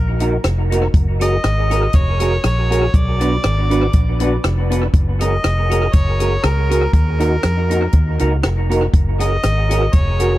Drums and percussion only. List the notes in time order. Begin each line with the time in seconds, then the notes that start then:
0.20 closed hi-hat
0.44 cross-stick, closed hi-hat
0.72 closed hi-hat
0.94 kick, closed hi-hat
1.21 closed hi-hat
1.44 cross-stick, closed hi-hat
1.71 closed hi-hat
1.93 kick, closed hi-hat
2.20 closed hi-hat
2.44 cross-stick, closed hi-hat
2.72 closed hi-hat
2.94 kick, closed hi-hat
3.21 closed hi-hat
3.43 cross-stick, closed hi-hat
3.71 closed hi-hat
3.93 kick, closed hi-hat
4.20 closed hi-hat
4.44 cross-stick, closed hi-hat
4.71 closed hi-hat
4.93 kick, closed hi-hat
5.21 closed hi-hat
5.44 cross-stick, closed hi-hat
5.71 closed hi-hat
5.93 kick, closed hi-hat
6.20 closed hi-hat
6.43 cross-stick, closed hi-hat
6.71 closed hi-hat
6.93 kick, closed hi-hat
7.20 closed hi-hat
7.43 cross-stick, closed hi-hat
7.71 closed hi-hat
7.92 kick, closed hi-hat
8.19 closed hi-hat
8.43 cross-stick, closed hi-hat
8.71 closed hi-hat
8.94 kick, closed hi-hat
9.20 closed hi-hat
9.43 cross-stick, closed hi-hat
9.71 closed hi-hat
9.93 kick, closed hi-hat
10.20 closed hi-hat